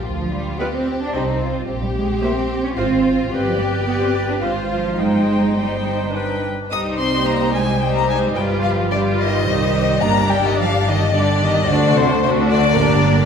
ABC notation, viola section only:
X:1
M:3/4
L:1/8
Q:1/4=109
K:Cm
V:1 name="Viola section"
z2 [F=B]2 [Gc]2 | z2 [Gc]2 [Fc]2 | [G=B]2 [GB]2 [Fc]2 | [Ec]2 [Ec]2 [D=B] z |
[G,E]4 [G,E]2 | [G,F]2 [G,F]2 [G,E]2 | [G,D]4 [G,D]2 | [=A,D]2 [A,D]2 [B,D]2 |]